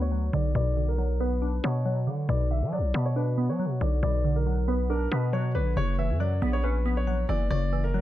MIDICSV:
0, 0, Header, 1, 4, 480
1, 0, Start_track
1, 0, Key_signature, 2, "minor"
1, 0, Tempo, 434783
1, 608, Time_signature, 4, 2, 24, 8
1, 8843, End_track
2, 0, Start_track
2, 0, Title_t, "Grand piano"
2, 0, Program_c, 0, 0
2, 17, Note_on_c, 0, 73, 84
2, 348, Note_off_c, 0, 73, 0
2, 370, Note_on_c, 0, 74, 86
2, 561, Note_off_c, 0, 74, 0
2, 613, Note_on_c, 0, 74, 104
2, 956, Note_off_c, 0, 74, 0
2, 977, Note_on_c, 0, 70, 79
2, 1308, Note_off_c, 0, 70, 0
2, 1330, Note_on_c, 0, 71, 89
2, 1781, Note_off_c, 0, 71, 0
2, 1812, Note_on_c, 0, 73, 86
2, 2487, Note_off_c, 0, 73, 0
2, 2531, Note_on_c, 0, 74, 100
2, 2721, Note_off_c, 0, 74, 0
2, 2771, Note_on_c, 0, 76, 81
2, 2961, Note_off_c, 0, 76, 0
2, 3011, Note_on_c, 0, 74, 87
2, 3355, Note_off_c, 0, 74, 0
2, 3374, Note_on_c, 0, 73, 84
2, 3465, Note_off_c, 0, 73, 0
2, 3491, Note_on_c, 0, 71, 83
2, 3835, Note_off_c, 0, 71, 0
2, 3858, Note_on_c, 0, 73, 76
2, 4188, Note_off_c, 0, 73, 0
2, 4206, Note_on_c, 0, 74, 74
2, 4398, Note_off_c, 0, 74, 0
2, 4446, Note_on_c, 0, 74, 103
2, 4792, Note_off_c, 0, 74, 0
2, 4814, Note_on_c, 0, 70, 77
2, 5146, Note_off_c, 0, 70, 0
2, 5168, Note_on_c, 0, 71, 80
2, 5360, Note_off_c, 0, 71, 0
2, 5407, Note_on_c, 0, 70, 91
2, 5599, Note_off_c, 0, 70, 0
2, 5651, Note_on_c, 0, 71, 72
2, 5841, Note_off_c, 0, 71, 0
2, 5887, Note_on_c, 0, 73, 80
2, 6079, Note_off_c, 0, 73, 0
2, 6124, Note_on_c, 0, 71, 84
2, 6317, Note_off_c, 0, 71, 0
2, 6370, Note_on_c, 0, 73, 98
2, 6560, Note_off_c, 0, 73, 0
2, 6609, Note_on_c, 0, 76, 73
2, 6800, Note_off_c, 0, 76, 0
2, 6845, Note_on_c, 0, 74, 77
2, 7192, Note_off_c, 0, 74, 0
2, 7211, Note_on_c, 0, 73, 83
2, 7303, Note_off_c, 0, 73, 0
2, 7325, Note_on_c, 0, 71, 80
2, 7672, Note_off_c, 0, 71, 0
2, 7696, Note_on_c, 0, 73, 82
2, 8027, Note_off_c, 0, 73, 0
2, 8048, Note_on_c, 0, 74, 91
2, 8240, Note_off_c, 0, 74, 0
2, 8286, Note_on_c, 0, 74, 109
2, 8632, Note_off_c, 0, 74, 0
2, 8654, Note_on_c, 0, 70, 76
2, 8843, Note_off_c, 0, 70, 0
2, 8843, End_track
3, 0, Start_track
3, 0, Title_t, "Synth pluck"
3, 0, Program_c, 1, 84
3, 0, Note_on_c, 1, 50, 82
3, 0, Note_on_c, 1, 54, 82
3, 0, Note_on_c, 1, 59, 87
3, 0, Note_on_c, 1, 62, 83
3, 116, Note_off_c, 1, 54, 0
3, 129, Note_off_c, 1, 50, 0
3, 129, Note_on_c, 1, 54, 90
3, 369, Note_on_c, 1, 50, 75
3, 608, Note_on_c, 1, 47, 91
3, 837, Note_off_c, 1, 50, 0
3, 849, Note_off_c, 1, 62, 0
3, 850, Note_on_c, 1, 50, 81
3, 1073, Note_off_c, 1, 54, 0
3, 1086, Note_on_c, 1, 54, 79
3, 1090, Note_off_c, 1, 59, 0
3, 1329, Note_on_c, 1, 59, 99
3, 1565, Note_on_c, 1, 62, 89
3, 1795, Note_off_c, 1, 59, 0
3, 1808, Note_off_c, 1, 47, 0
3, 1808, Note_on_c, 1, 59, 83
3, 2035, Note_off_c, 1, 54, 0
3, 2048, Note_on_c, 1, 54, 96
3, 2049, Note_off_c, 1, 50, 0
3, 2287, Note_on_c, 1, 50, 78
3, 2527, Note_on_c, 1, 47, 90
3, 2753, Note_off_c, 1, 50, 0
3, 2766, Note_on_c, 1, 50, 78
3, 2767, Note_off_c, 1, 62, 0
3, 2996, Note_off_c, 1, 54, 0
3, 3008, Note_off_c, 1, 59, 0
3, 3010, Note_on_c, 1, 54, 75
3, 3250, Note_on_c, 1, 59, 92
3, 3490, Note_on_c, 1, 62, 81
3, 3715, Note_off_c, 1, 59, 0
3, 3727, Note_off_c, 1, 47, 0
3, 3728, Note_on_c, 1, 59, 79
3, 3956, Note_off_c, 1, 54, 0
3, 3967, Note_off_c, 1, 50, 0
3, 3969, Note_on_c, 1, 54, 90
3, 4209, Note_on_c, 1, 50, 78
3, 4449, Note_on_c, 1, 47, 94
3, 4676, Note_off_c, 1, 50, 0
3, 4689, Note_off_c, 1, 62, 0
3, 4689, Note_on_c, 1, 50, 81
3, 4917, Note_off_c, 1, 54, 0
3, 4928, Note_off_c, 1, 59, 0
3, 4930, Note_on_c, 1, 54, 81
3, 5166, Note_on_c, 1, 59, 97
3, 5408, Note_on_c, 1, 62, 84
3, 5637, Note_off_c, 1, 59, 0
3, 5649, Note_off_c, 1, 47, 0
3, 5650, Note_on_c, 1, 59, 83
3, 5873, Note_off_c, 1, 54, 0
3, 5886, Note_on_c, 1, 54, 95
3, 5889, Note_off_c, 1, 50, 0
3, 6129, Note_on_c, 1, 50, 73
3, 6366, Note_on_c, 1, 49, 88
3, 6367, Note_off_c, 1, 54, 0
3, 6368, Note_off_c, 1, 50, 0
3, 6368, Note_off_c, 1, 62, 0
3, 6369, Note_off_c, 1, 59, 0
3, 6608, Note_on_c, 1, 52, 72
3, 6846, Note_on_c, 1, 54, 83
3, 7089, Note_on_c, 1, 59, 98
3, 7329, Note_on_c, 1, 61, 86
3, 7556, Note_off_c, 1, 59, 0
3, 7567, Note_off_c, 1, 49, 0
3, 7569, Note_on_c, 1, 59, 86
3, 7795, Note_off_c, 1, 54, 0
3, 7808, Note_off_c, 1, 52, 0
3, 7809, Note_on_c, 1, 54, 97
3, 8048, Note_on_c, 1, 52, 78
3, 8289, Note_on_c, 1, 49, 93
3, 8517, Note_off_c, 1, 52, 0
3, 8529, Note_off_c, 1, 61, 0
3, 8530, Note_on_c, 1, 52, 78
3, 8755, Note_off_c, 1, 54, 0
3, 8769, Note_off_c, 1, 59, 0
3, 8769, Note_on_c, 1, 54, 82
3, 8843, Note_off_c, 1, 49, 0
3, 8843, Note_off_c, 1, 52, 0
3, 8843, Note_off_c, 1, 54, 0
3, 8843, End_track
4, 0, Start_track
4, 0, Title_t, "808-style bass"
4, 0, Program_c, 2, 38
4, 0, Note_on_c, 2, 38, 102
4, 330, Note_off_c, 2, 38, 0
4, 369, Note_on_c, 2, 35, 100
4, 599, Note_off_c, 2, 35, 0
4, 609, Note_on_c, 2, 35, 110
4, 1764, Note_off_c, 2, 35, 0
4, 1809, Note_on_c, 2, 47, 106
4, 2289, Note_on_c, 2, 50, 96
4, 2305, Note_off_c, 2, 47, 0
4, 2516, Note_off_c, 2, 50, 0
4, 2528, Note_on_c, 2, 35, 105
4, 2896, Note_on_c, 2, 54, 98
4, 2912, Note_off_c, 2, 35, 0
4, 3072, Note_on_c, 2, 35, 104
4, 3089, Note_off_c, 2, 54, 0
4, 3240, Note_off_c, 2, 35, 0
4, 3248, Note_on_c, 2, 47, 105
4, 3856, Note_on_c, 2, 54, 99
4, 3872, Note_off_c, 2, 47, 0
4, 4033, Note_on_c, 2, 47, 99
4, 4049, Note_off_c, 2, 54, 0
4, 4200, Note_off_c, 2, 47, 0
4, 4208, Note_on_c, 2, 35, 103
4, 4439, Note_off_c, 2, 35, 0
4, 4448, Note_on_c, 2, 35, 111
4, 5604, Note_off_c, 2, 35, 0
4, 5648, Note_on_c, 2, 47, 100
4, 6129, Note_on_c, 2, 34, 94
4, 6145, Note_off_c, 2, 47, 0
4, 6356, Note_off_c, 2, 34, 0
4, 6368, Note_on_c, 2, 30, 107
4, 6735, Note_on_c, 2, 42, 99
4, 6752, Note_off_c, 2, 30, 0
4, 7070, Note_off_c, 2, 42, 0
4, 7088, Note_on_c, 2, 34, 106
4, 8010, Note_off_c, 2, 34, 0
4, 8048, Note_on_c, 2, 30, 102
4, 8279, Note_off_c, 2, 30, 0
4, 8288, Note_on_c, 2, 30, 110
4, 8843, Note_off_c, 2, 30, 0
4, 8843, End_track
0, 0, End_of_file